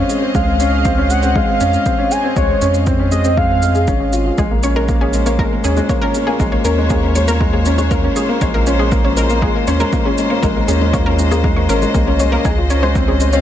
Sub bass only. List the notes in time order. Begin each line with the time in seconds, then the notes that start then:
0.35 C#2
1.61 F2
2.37 C#2
2.62 F2
3.88 G#1
4.00 G#1
4.38 A#1
5.64 D#2
6.40 A#1
6.64 D#2
8.42 A#1
9.67 D#2
10.43 A#1
10.68 D#2
11.69 G#1
11.95 C2
12.45 C#2